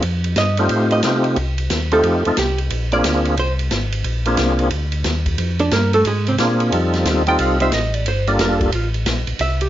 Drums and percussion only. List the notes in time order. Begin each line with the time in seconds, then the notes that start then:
0.02 ride
0.24 ride
0.36 snare, hi-hat pedal, ride
0.57 ride
0.69 ride
0.91 ride
1.03 snare, hi-hat pedal, ride
1.24 ride
1.36 ride
1.58 ride
1.70 snare, hi-hat pedal, ride
1.92 ride
2.03 ride
2.25 ride
2.37 snare, hi-hat pedal, ride
2.58 ride
2.70 ride
2.92 ride
3.04 snare, hi-hat pedal, ride
3.25 ride
3.37 ride
3.59 ride
3.71 snare, hi-hat pedal, ride
3.92 ride
4.04 ride
4.25 ride
4.37 snare, hi-hat pedal, ride
4.59 ride
4.70 ride
4.92 ride
5.04 snare, hi-hat pedal, ride
5.26 kick, ride
5.38 ride
5.59 ride
5.71 snare, hi-hat pedal, ride
5.93 ride
6.05 ride
6.27 ride
6.38 snare, hi-hat pedal, ride
6.60 ride
6.72 ride
6.94 snare, ride
7.05 snare, hi-hat pedal, ride
7.27 ride
7.39 ride
7.60 ride
7.72 snare, hi-hat pedal, ride
7.94 ride
8.06 ride
8.27 ride
8.39 snare, hi-hat pedal, ride
8.61 kick, ride
8.72 ride
8.94 ride
9.06 snare, hi-hat pedal, ride
9.27 ride
9.39 ride
9.61 ride